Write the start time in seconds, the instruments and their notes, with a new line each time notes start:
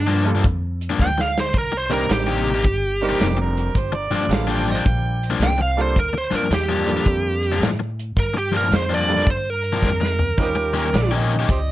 Already playing: upright bass G2, lead electric guitar D4
0.07 overdriven electric guitar G2 F3 A#3 D4
0.25 grand piano G3 A#3 D4 F4 A4, closed hi-hat
0.35 overdriven electric guitar G2 F3 A#3 D4
0.44 upright bass F2, muted overdriven electric guitar stroke, kick, closed hi-hat
0.81 closed hi-hat
0.90 overdriven electric guitar G2 F3 A#3 D4
0.99 upright bass D2, lead electric guitar G5, kick, snare
1.18 lead electric guitar F5, muted overdriven electric guitar stroke, snare
1.38 lead electric guitar C5, snare
1.53 upright bass C2, kick, closed hi-hat
1.58 lead electric guitar A#4
1.72 muted overdriven electric guitar stroke
1.77 lead electric guitar C5
1.90 overdriven electric guitar C3 A#3 D#4 G4, grand piano G3 C4 D4 D#4 A#4, lead electric guitar A#4, closed hi-hat
2.09 upright bass A1, lead electric guitar G4, muted overdriven electric guitar stroke, snare, closed hi-hat
2.27 overdriven electric guitar C3 A#3 D#4 G4
2.46 closed hi-hat
2.54 overdriven electric guitar C3 A#3 D#4 G4
2.64 upright bass G1, muted overdriven electric guitar stroke, kick, closed hi-hat
3.01 grand piano G3 C4 D4 D#4 A#4, harmonica C4 D#4 G4, closed hi-hat
3.09 overdriven electric guitar C3 A#3 D#4 G4
3.20 upright bass F1, snare, closed hi-hat
3.37 harmonica A#4, muted overdriven electric guitar stroke
3.57 closed hi-hat
3.75 upright bass G1, harmonica C5, kick, closed hi-hat
3.92 muted overdriven electric guitar stroke
3.96 harmonica D5
4.11 overdriven electric guitar G2 F3 A#3 D4, muted upright bass stroke, closed hi-hat
4.28 upright bass A1, grand piano G3 A#3 D4 F4 A4, harmonica F5, muted overdriven electric guitar stroke, closed hi-hat
4.33 snare
4.47 overdriven electric guitar G2 F3 A#3 D4, harmonica G5
4.68 harmonica C5 D#5 G5, closed hi-hat
4.75 overdriven electric guitar G2 F3 A#3 D4
4.85 upright bass A#1, muted overdriven electric guitar stroke, kick, closed hi-hat
5.23 closed hi-hat
5.30 overdriven electric guitar G2 F3 A#3 D4
5.40 upright bass C2, lead electric guitar G5, snare, closed hi-hat
5.58 lead electric guitar F5, muted overdriven electric guitar stroke
5.77 grand piano G3 A#3 D4 F4 A4, closed hi-hat
5.81 lead electric guitar C5
5.96 upright bass D2, lead electric guitar A#4, kick, closed hi-hat
6.13 muted overdriven electric guitar stroke
6.18 lead electric guitar C5
6.31 overdriven electric guitar G2 F3 A#3 D4, muted upright bass stroke, closed hi-hat
6.35 lead electric guitar A#4
6.50 upright bass E2, lead electric guitar G4, muted overdriven electric guitar stroke, snare, closed hi-hat
6.69 overdriven electric guitar G2 F3 A#3 D4
6.86 grand piano G3 A#3 D4 F4 A4, closed hi-hat
6.96 overdriven electric guitar G2 F3 A#3 D4
7.06 upright bass F2, muted overdriven electric guitar stroke, kick, closed hi-hat
7.43 closed hi-hat
7.52 overdriven electric guitar G2 F3 A#3 D4
7.60 upright bass A2, snare, closed hi-hat
7.79 muted overdriven electric guitar stroke
7.99 closed hi-hat
8.16 upright bass G2, lead electric guitar A#4, kick, closed hi-hat
8.34 muted overdriven electric guitar stroke
8.38 lead electric guitar G4
8.52 overdriven electric guitar G2 F3 A#3 D4, closed hi-hat
8.56 lead electric guitar A#4
8.71 upright bass F2, muted overdriven electric guitar stroke, snare, closed hi-hat
8.76 lead electric guitar C5
8.90 overdriven electric guitar G2 F3 A#3 D4
8.94 lead electric guitar D5
9.08 grand piano G3 A#3 D4 F4 A4, closed hi-hat
9.17 overdriven electric guitar G2 F3 A#3 D4
9.26 upright bass G2, muted overdriven electric guitar stroke, kick, closed hi-hat
9.31 lead electric guitar C5
9.50 lead electric guitar A#4
9.63 closed hi-hat
9.73 overdriven electric guitar G2 F3 A#3 D4
9.83 upright bass F2, kick, snare
10.00 muted overdriven electric guitar stroke, snare
10.19 floor tom
10.37 upright bass D#2, grand piano G3 C#4 D#4 F4 A#4, harmonica C4 D#4 G4, kick, closed hi-hat
10.56 muted overdriven electric guitar stroke
10.74 overdriven electric guitar D#3 A#3 C#4 G4, harmonica D#4 G4 A#4, closed hi-hat
10.93 upright bass A#1, harmonica D5, muted overdriven electric guitar stroke, snare, closed hi-hat
11.11 overdriven electric guitar D#3 A#3 C#4 G4
11.16 harmonica D#5
11.31 closed hi-hat
11.39 overdriven electric guitar D#3 A#3 C#4 G4
11.49 upright bass C#2, harmonica G4 C5 D#5, muted overdriven electric guitar stroke, kick, closed hi-hat